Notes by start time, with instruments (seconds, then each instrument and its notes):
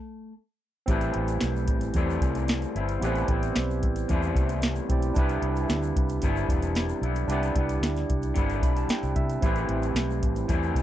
Already playing: clean electric guitar A3
0.86 fingered electric bass A1, clean electric guitar A2 E3 G3, tine electric piano C4 E4 G4, kick, closed hi-hat, shaker
0.90 clean electric guitar C4 E4, tine electric piano B4
1.01 closed hi-hat, shaker
1.14 fingered electric bass A1, closed hi-hat
1.28 closed hi-hat, shaker
1.41 fingered electric bass B1, snare, closed hi-hat, shaker
1.56 shaker
1.67 fingered electric bass A1, kick, closed hi-hat
1.81 closed hi-hat, shaker
1.94 fingered electric bass E2, clean electric guitar A2 E3 G3 C4 E4, kick, closed hi-hat, shaker
2.10 shaker
2.21 fingered electric bass C2, kick, closed hi-hat, shaker
2.35 closed hi-hat, shaker
2.48 snare, closed hi-hat, shaker
2.62 closed hi-hat, shaker
2.75 fingered electric bass G1, clean electric guitar G3 C4 E4, closed hi-hat
2.89 closed hi-hat, shaker
3.00 fingered electric bass A1, clean electric guitar A2 E3, tine electric piano B3 E4 G4, closed hi-hat
3.04 clean electric guitar G3 C4 E4, tine electric piano C4 B4, shaker
3.15 closed hi-hat, shaker
3.28 fingered electric bass A1, clean electric guitar C4 E4, kick, closed hi-hat
3.32 clean electric guitar G3
3.43 closed hi-hat, shaker
3.56 fingered electric bass B1, snare, closed hi-hat, shaker
3.71 shaker
3.82 fingered electric bass A1, kick, closed hi-hat
3.96 closed hi-hat, shaker
4.09 fingered electric bass E2, clean electric guitar A2 E3 G3 C4 E4, kick, closed hi-hat, shaker
4.23 shaker
4.35 fingered electric bass C2, kick, closed hi-hat, shaker
4.49 closed hi-hat, shaker
4.62 snare, closed hi-hat, shaker
4.76 closed hi-hat, shaker
4.89 fingered electric bass B1, tine electric piano C4 E4 G4 D5, kick, closed hi-hat
5.02 closed hi-hat, shaker
5.14 fingered electric bass C2, clean electric guitar C3, tine electric piano D4 E4 G4, kick, closed hi-hat, shaker
5.18 clean electric guitar G3 B3 E4, tine electric piano B4
5.29 closed hi-hat, shaker
5.42 fingered electric bass C2, closed hi-hat
5.56 closed hi-hat, shaker
5.69 fingered electric bass D2, snare, closed hi-hat, shaker
5.83 shaker
5.96 fingered electric bass C2, kick, closed hi-hat
6.09 closed hi-hat, shaker
6.22 fingered electric bass G1, clean electric guitar C3 G3 B3 E4, kick, closed hi-hat, shaker
6.37 shaker
6.48 fingered electric bass E1, kick, closed hi-hat, shaker
6.62 closed hi-hat, shaker
6.75 snare, closed hi-hat, shaker
6.89 closed hi-hat, shaker
7.02 fingered electric bass B1, clean electric guitar G3 B3 E4, closed hi-hat
7.15 closed hi-hat, shaker
7.28 fingered electric bass C2, clean electric guitar C3 G3 B3, tine electric piano D4 E4 G4, closed hi-hat, shaker
7.32 clean electric guitar E4, tine electric piano D5
7.43 closed hi-hat, shaker
7.55 fingered electric bass C2, clean electric guitar G3 B3 E4, kick, closed hi-hat
7.69 closed hi-hat, shaker
7.81 fingered electric bass D2, snare, closed hi-hat, shaker
7.96 snare, closed hi-hat, shaker
8.09 fingered electric bass C2, kick, closed hi-hat
8.22 closed hi-hat, shaker
8.34 fingered electric bass G1, clean electric guitar C3 G3 B3 E4, kick, closed hi-hat, shaker
8.50 closed hi-hat, shaker
8.62 fingered electric bass B1, tine electric piano B5, kick, closed hi-hat, shaker
8.76 tine electric piano A5, closed hi-hat, shaker
8.88 tine electric piano G5, muted fingered electric bass stroke, snare, closed hi-hat, shaker
9.03 fingered electric bass C2, closed hi-hat, shaker
9.15 fingered electric bass C3, tine electric piano E5, kick, closed hi-hat
9.30 closed hi-hat, shaker
9.41 fingered electric bass A1, clean electric guitar A2 E3 G3 C4, tine electric piano C4 E4 G4, kick, closed hi-hat, shaker
9.46 clean electric guitar E4, tine electric piano B4
9.56 closed hi-hat, shaker
9.69 fingered electric bass A1, closed hi-hat
9.83 closed hi-hat, shaker
9.94 fingered electric bass B1, snare, closed hi-hat, shaker
10.10 shaker
10.23 fingered electric bass A1, kick, closed hi-hat
10.36 closed hi-hat, shaker
10.48 fingered electric bass E2, clean electric guitar A2 E3 G3 C4 E4, kick, closed hi-hat, shaker
10.63 shaker
10.74 fingered electric bass C2, kick, closed hi-hat, shaker